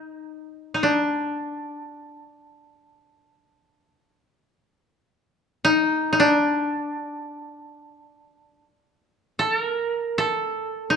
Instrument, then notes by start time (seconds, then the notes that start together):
koto
Already playing: D#4
0.74 D#4
0.83 D4
5.65 D#4
6.13 D#4
6.20 D4
9.39 A4
9.57 A#4
10.18 A4
10.90 G4